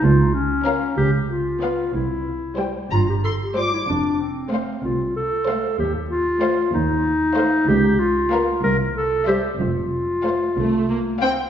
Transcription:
<<
  \new Staff \with { instrumentName = "Violin section" } { \time 6/8 \key c \mixolydian \tempo 4. = 63 r4 f''8 r4 f''8 | r4 g''8 bes''8 c'''8 d'''8 | r4 f''8 r4 f''8 | r4 f''8 r4 f''8 |
r4 f''8 r4 e''8 | r4 f''8 r4 <f'' g''>8 | }
  \new Staff \with { instrumentName = "Violin section" } { \time 6/8 \key c \mixolydian r4 bes'8 r4 ces''8 | r4 c''8 r4 c''8 | r4 c''8 r4 c''8 | r4 c''8 r4 c''8 |
r4 bes'8 r4 c''8 | r4 c''8 r4 <c'' g''>8 | }
  \new Staff \with { instrumentName = "Clarinet" } { \time 6/8 \key c \mixolydian f'8 des'4 g'8 f'4 | e'4 r8 f'16 g'16 a'16 g'16 f'16 e'16 | d'8 c'4 f'8 a'4 | g'8 f'4 ees'4. |
g'8 f'4 bes'8 a'8 g'8 | f'2~ f'8 r8 | }
  \new Staff \with { instrumentName = "Viola section" } { \time 6/8 \key c \mixolydian r4 des'8 r4 ces'8 | r4 g8 r4 g8 | r4 a8 r4 a8 | r4 a8 r4 a8 |
r4 bes8 r4 g8 | r4 a8 a8 bes8 c'8 | }
  \new Staff \with { instrumentName = "Cello section" } { \clef bass \time 6/8 \key c \mixolydian des,4. des,4. | c,4. g,4. | f,4. c,4. | ees,4. ees,4. |
des,4. c,4. | f,4. c,4. | }
  \new Staff \with { instrumentName = "Double bass section" } { \clef bass \time 6/8 \key c \mixolydian des,4. des,4. | c,4. g,,4. | f,,4. c,4. | ees,4. ees,4. |
des,4. c,4. | f,,4. c,4. | }
>>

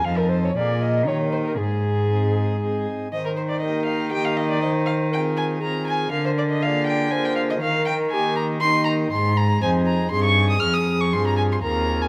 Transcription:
<<
  \new Staff \with { instrumentName = "Violin" } { \time 3/4 \key aes \major \tempo 4 = 120 f''16 bes'16 c''16 des''16 d''8 ees''8 des''8 c''16 bes'16 | aes'2~ aes'8 r8 | \key ees \major ees''16 bes'16 c''16 d''16 ees''8 f''8 g''16 f''16 ees''16 d''16 | ees''8 f''8 g''8 aes''8 bes''8 aes''8 |
f''16 c''16 d''16 ees''16 f''8 g''8 aes''16 g''16 f''16 ees''16 | f''8 g''8 aes''8 bes''8 c'''8 bes''8 | \key aes \major c'''8 bes''8 aes''8 bes''8 c'''16 des'''8 ees'''16 | f'''16 ees'''8 des'''16 c'''16 bes''16 aes''16 c'''16 bes''8. aes''16 | }
  \new Staff \with { instrumentName = "Flute" } { \time 3/4 \key aes \major f''16 bes'16 c''16 des''16 d''8 ees''8 des''8 c''16 bes'16 | aes'2~ aes'8 r8 | \key ees \major c''4 bes'4 g'4 | c''4 bes'4 aes'4 |
bes'4 d''4 c''4 | bes'4 g'4 ees'4~ | \key aes \major ees'8 r8 c''4 aes'4~ | aes'2 bes'4 | }
  \new Staff \with { instrumentName = "Pipe organ" } { \time 3/4 \key aes \major <c' ees' a'>4 <bes f' aes'>4 <bes ees' g'>4 | aes4 <c' ees' aes'>4 <c' ees' aes'>4 | \key ees \major r4 <bes ees' g'>4 <bes ees' g'>4 | r4 <c' f' aes'>4 <c' f' aes'>4 |
r4 <bes f' aes'>4 <bes f' aes'>4 | r4 <bes ees' g'>4 <bes ees' g'>4 | \key aes \major aes4 <c' ees' aes'>4 <c' ees' aes'>4 | r4 <c' f' aes'>4 <c' f' aes'>4 | }
  \new Staff \with { instrumentName = "Pipe organ" } { \clef bass \time 3/4 \key aes \major f,4 bes,4 ees4 | aes,2~ aes,8 r8 | \key ees \major ees2.~ | ees2. |
d2. | ees2. | \key aes \major aes,4 f,4 g,4 | f,4 g,4 ees,4 | }
  \new Staff \with { instrumentName = "Cello" } { \clef bass \time 3/4 \key aes \major f,4 bes,4 ees4 | aes,2~ aes,8 r8 | \key ees \major ees2.~ | ees2. |
d2. | ees2. | \key aes \major aes,4 f,4 g,4 | f,4 g,4 ees,4 | }
>>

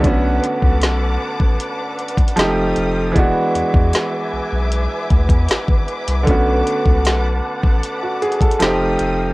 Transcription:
<<
  \new Staff \with { instrumentName = "String section" } { \time 4/4 \key b \dorian \tempo 4 = 77 << { <b' d'''>2. <a' ees'''>4 | <b' d'''>1~ | <b' d'''>2. <a' ees'''>4 | } \\ { <fis'' a''>2. <f'' g''>4 | <e'' gis''>1 | <fis'' a''>2. <f'' g''>4 | } >> }
  \new Staff \with { instrumentName = "Grand piano" } { \time 4/4 \key b \dorian r1 | r1 | r2 r16 fis'16 gis'16 a'8 r8. | }
  \new Staff \with { instrumentName = "Grand piano" } { \time 4/4 \key b \dorian <d a b cis' fis'>2. <f gis a c' ees' g'>4 | <e gis b d' fis'>1 | <d a b cis' fis'>2. <f a c' ees' g'>4 | }
  \new Staff \with { instrumentName = "Sub bass" } { \clef bass \time 4/4 \key b \dorian b,,8 r16 cis,16 b,,8 r16 a,,16 r4 f,,8 f,,8 | e,,16 r16 e,16 e,16 r8 b,,16 b,,8 r16 d,16 e,16 gis,,16 gis,,16 r16 c,16 | b,,8 r16 cis,16 b,,8 r16 a,,16 r4 f,,8 f,,8 | }
  \new DrumStaff \with { instrumentName = "Drums" } \drummode { \time 4/4 <hh bd>8 hh16 bd16 <hh sn>8. bd16 hh8 hh32 hh32 <hh bd>32 hh32 <hh sn>8 hh8 | <hh bd>8 hh16 bd16 <hh sn>4 hh8 <hh bd>16 <hh bd>16 <hh sn>16 bd16 hh16 hh16 | <hh bd>8 hh16 bd16 <hh sn>8. bd16 hh8 hh32 hh32 <hh bd>32 hh32 <hh sn>8 hh8 | }
>>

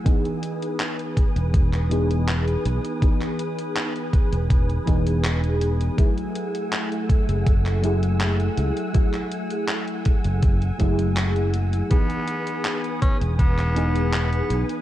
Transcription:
<<
  \new Staff \with { instrumentName = "String machine" } { \time 4/4 \key e \major \tempo 4 = 81 << { <b' dis'''>1~ | <b' dis'''>1 | <a fis'' e'''>1~ | <a fis'' e'''>1 |
<b' dis'''>1 | } \\ { gis''1~ | gis''1~ | gis''1~ | gis''1~ |
gis''1 | } >> }
  \new Staff \with { instrumentName = "FM electric piano" } { \time 4/4 \key e \major <e b dis' gis'>2~ <e b dis' gis'>8 <e b dis' gis'>4. | <e b dis' gis'>2~ <e b dis' gis'>8 <e b dis' gis'>4. | <fis a e' gis'>2~ <fis a e' gis'>8 <fis a e' gis'>4. | <fis a e' gis'>2~ <fis a e' gis'>8 <fis a e' gis'>4. |
<e b dis' gis'>2~ <e b dis' gis'>8 <e b dis' gis'>4. | }
  \new Staff \with { instrumentName = "Tenor saxophone" } { \time 4/4 \key e \major r1 | r1 | r1 | r1 |
b4. cis'8 b4 b8. r16 | }
  \new Staff \with { instrumentName = "Fingered electric bass" } { \clef bass \time 4/4 \key e \major r4. r16 e,,4. r16 b,,16 r16 | r4. r16 e,,8 r16 e,,4~ e,,16 r16 | r4. r16 fis,,4. r16 cis,16 r16 | r4. r16 fis,,8 r16 fis,,4~ fis,,16 r16 |
r4. r16 e,,4. r16 b,,16 r16 | }
  \new DrumStaff \with { instrumentName = "Drums" } \drummode { \time 4/4 <hh bd>16 hh16 hh16 hh16 <hc hh>16 hh16 <hh bd>16 hh16 <hh bd>16 <hc hh>16 hh16 hh16 <hc hh>16 hh16 hh16 hh16 | <hh bd>16 <hc hh>16 hh16 hh16 <hc hh>16 hh16 <hh bd>16 hh16 <hh bd>16 hh16 <hh bd>16 hh16 <hc hh>16 hh16 hh16 hh16 | <hh bd>16 hh16 hh16 hh16 <hc hh>16 hh16 <hh bd>16 hh16 <hh bd>16 <hc hh>16 hh16 hh16 <hc hh>16 hh16 hh16 hh16 | <hh bd>16 <hc hh>16 hh16 hh16 <hc hh>16 hh16 <hh bd>16 hh16 <hh bd>16 hh16 <hh bd>16 hh16 <hc hh>16 hh16 hh16 hh16 |
<hh bd>16 hh16 hh16 hh16 <hc hh>16 hh16 <hh bd>16 hh16 <hh bd>16 <hc hh>16 hh16 hh16 <hc hh>16 hh16 hh16 hh16 | }
>>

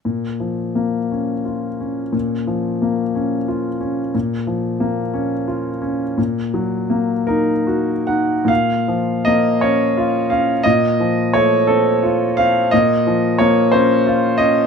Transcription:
<<
  \new Staff \with { instrumentName = "Grand piano" } { \time 6/8 \key bes \minor \tempo 4. = 58 r2. | r2. | r2. | r4. bes'4 ges''8 |
f''4 ees''8 des''4 f''8 | ees''4 des''8 a'4 f''8 | ees''4 des''8 c''4 ees''8 | }
  \new Staff \with { instrumentName = "Grand piano" } { \time 6/8 \key bes \minor bes,8 f8 bes8 des'8 f'8 des'8 | bes,8 f8 bes8 des'8 f'8 des'8 | bes,8 f8 bes8 des'8 f'8 des'8 | bes,8 ges8 bes8 ees'8 ges'8 ees'8 |
bes,8 f8 bes8 des'8 f'8 des'8 | bes,8 f8 a8 c'8 f'8 c'8 | bes,8 f8 bes8 des'8 f'8 des'8 | }
>>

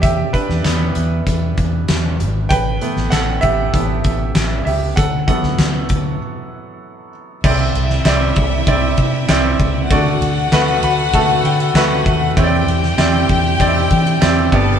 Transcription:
<<
  \new Staff \with { instrumentName = "Violin section" } { \time 4/4 \key c \lydian \tempo 4 = 97 r1 | r1 | r1 | <e' e''>1 |
<fis' fis''>1 | <g' g''>2.~ <g' g''>8 <a' a''>8 | }
  \new Staff \with { instrumentName = "Grand piano" } { \time 4/4 \key c \lydian << { <g' e''>8 <d' b'>2. r8 | <b' g''>4 <a' fis''>8 <g' e''>2 <g' e''>8 | <a' fis''>8 <a' fis''>2. r8 | r1 |
r4. b''8 a''8 g''8 fis''8 e''8 | r1 | } \\ { r1 | r1 | r1 | <c' e' d''>4 <c' e' d''>4 <c' e' d''>4 <c' e' d''>4 |
<a fis' d''>4 <a fis' b'>4 <a fis' a'>4 <a fis' b'>4 | <c' e' cis'' d''>4 <c' e' d''>4 <c' ees' e' d''>4 <c' e' d''>8 <b g' d''>8 | } >> }
  \new Staff \with { instrumentName = "Grand piano" } { \clef bass \time 4/4 \key c \lydian r4 <e g b>4. r4. | r8 <e a b>4. <e a b>8 r4. | r8 <e fis b>4. r2 | c4. r2 r8 |
d4. r2 r8 | e4. r2 g,8 | }
  \new Staff \with { instrumentName = "Fingered electric bass" } { \clef bass \time 4/4 \key c \lydian e,8 r16 e,16 e,8 e,8 e,8 e,8 e,8 aes,,8 | a,,8 r16 a,,16 a,,8 a,,8 a,,8 a,,8 a,,8 cis,8 | d,8 r16 d,16 d,8 d,8 r2 | c,8 c,8 c,8 c,8 c,8 c8 c,8 cis,8 |
d,8 d,8 d,8 d,8 d,8 d8 d,8 ees,8 | e,8 e,8 e,8 e,8 e,8 e8 e,8 g,,8 | }
  \new DrumStaff \with { instrumentName = "Drums" } \drummode { \time 4/4 <hh bd>8 <hh bd>16 sn16 <hc hh sn>8 hh8 <hh bd>8 <hh bd>8 <hc hh sn>8 hh8 | <hh bd>8 hh16 sn16 <hc hh sn>8 <hh bd>8 <hh bd>8 <hh bd>8 <hc hh sn>8 hho8 | <hh bd>8 <hh bd>16 sn16 <hc hh sn>8 <hh bd>8 r4 r4 | <cymc bd>8 cymr16 sn16 <hc cymr sn>8 <bd cymr>8 <bd cymr>8 <bd cymr>8 <hc cymr sn>8 <bd cymr>8 |
<bd cymr>8 cymr8 <hc cymr sn>16 cymr16 cymr8 <bd cymr>8 cymr16 cymr16 <hc cymr sn>8 <bd cymr>8 | <bd cymr>8 cymr16 sn16 <hc cymr sn>8 <bd cymr>8 <bd cymr>8 <bd cymr>16 cymr16 <hc cymr sn>8 <bd cymr>8 | }
>>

